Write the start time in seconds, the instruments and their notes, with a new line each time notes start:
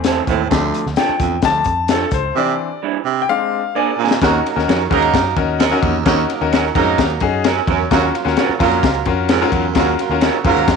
Already playing: picked electric bass E2, grand piano E3 A3 C4
0.04 clean electric guitar C4 E4 A4, snare, closed hi-hat
0.27 picked electric bass D#2, baritone saxophone A2, clean electric guitar C4 E4 A4, kick, closed hi-hat
0.50 baritone saxophone D2, picked electric bass D2, grand piano F3 A3 D4, kick, snare, closed hi-hat
0.74 closed hi-hat
0.86 picked electric bass D2, snare
0.96 clean electric guitar D4 F4 A4, grand piano G5, snare, closed hi-hat
1.09 muted picked electric bass stroke
1.19 picked electric bass E2, baritone saxophone F2, kick, closed hi-hat
1.42 picked electric bass D2, grand piano F3 A3 D4 A5, kick, snare, closed hi-hat
1.64 picked electric bass F2, kick, closed hi-hat
1.88 clean electric guitar D4 F4 A4, grand piano A4, snare, closed hi-hat
2.11 picked electric bass C#2, grand piano C5, kick, closed hi-hat
2.35 baritone saxophone C3, grand piano E3 C4 D4 D5
2.83 clean electric guitar G3 D4 E4
3.04 baritone saxophone C3
3.22 grand piano G5
3.29 grand piano G#3 C4 D4 F5
3.75 clean electric guitar A#3 D4 G#4, grand piano D5
3.97 baritone saxophone A#2, clean electric guitar A#3 D4 G#4
4.11 snare
4.21 baritone saxophone D#2, picked electric bass D#2, horn section D#3 F#3 C#4 F#4, grand piano C#4 D#4 F#4 A#4, kick, snare, ride
4.45 horn section F#3 A#3 D#4 A#4, ride
4.56 picked electric bass D#2, grand piano C#4 D#4 F#4 A#4, snare
4.68 picked electric bass F2, horn section D#3 F#3 C#4 F#4, clean electric guitar C#4 F#4 A#4, snare, ride
4.90 picked electric bass D#2, baritone saxophone G#2, horn section F#3 A#3 D#4 A#4, grand piano C#4 D#4 F#4 A#4, kick, ride
5.02 ride
5.14 picked electric bass F#2, kick, snare, ride
5.36 picked electric bass D#2, grand piano C#4 D#4 F#4 A#4, kick, ride
5.59 baritone saxophone F#2, clean electric guitar C#4 F#4 A#4, snare, ride
5.71 grand piano C#4 D#4 F#4 A#4
5.81 baritone saxophone D#2, picked electric bass E2, kick, ride
6.05 baritone saxophone D#2, picked electric bass D#2, horn section D#3 F#3 C#4 F#4, grand piano C#4 D#4 F#4 A#4, kick, snare, ride
6.30 horn section F#3 A#3 D#4 A#4, ride
6.41 picked electric bass D#2, grand piano C#4 D#4 F#4 A#4
6.52 horn section D#3 F#3 C#4 F#4, clean electric guitar C#4 F#4 A#4, snare, ride
6.75 picked electric bass F2, baritone saxophone G#2, horn section F#3 A#3 D#4 A#4, grand piano C#4 D#4 F#4 A#4, kick, ride
6.98 picked electric bass D#2, kick, snare, ride
7.10 ride
7.20 picked electric bass F#2, grand piano C#4 D#4 F#4 G#4, kick, ride
7.44 clean electric guitar C#4 F#4 A#4, grand piano A#4, snare, ride
7.67 picked electric bass E2, baritone saxophone F#2, clean electric guitar C#4 F#4 A#4, grand piano C#5, kick, ride
7.91 picked electric bass D#2, baritone saxophone F#2, horn section C#3 F#3 A#3 F#4, grand piano C#4 F4 F#4 A#4, kick, snare, ride
8.14 horn section F#3 A#3 F4 A#4, ride
8.25 picked electric bass D#2, grand piano C#4 F4 F#4 A#4, snare
8.37 horn section C#3 F#3 A#3 F#4, clean electric guitar C#4 F4 A#4, snare, ride
8.49 muted picked electric bass stroke
8.59 picked electric bass F2, baritone saxophone A#2, horn section F#3 A#3 F4 A#4, grand piano C#4 F4 F#4 A#4, kick, ride
8.71 ride
8.83 picked electric bass C#2, kick, snare, ride
8.95 ride
9.05 picked electric bass F2, grand piano C#4 F4 F#4 A#4, kick, ride
9.29 baritone saxophone G#2, clean electric guitar C#4 F4 A#4, snare, ride
9.41 grand piano C#4 F4 F#4 A#4
9.52 picked electric bass E2, baritone saxophone F#2, kick, ride
9.75 picked electric bass D#2, baritone saxophone F#2, horn section C#3 F#3 A#3 F#4, grand piano C#4 F4 F#4 A#4, kick, snare, ride
9.99 horn section F#3 A#3 F4 A#4, ride
10.10 picked electric bass D#2, grand piano C#4 F4 F#4 A#4
10.21 horn section C#3 F#3 A#3 F#4, clean electric guitar C#4 F4 A#4, snare, ride
10.45 picked electric bass F2, baritone saxophone G#2, horn section F#3 A#3 F4 A#4, grand piano C#4 F4 F#4 A#4, kick, ride
10.56 picked electric bass D#2, ride
10.68 picked electric bass F2, kick, snare, ride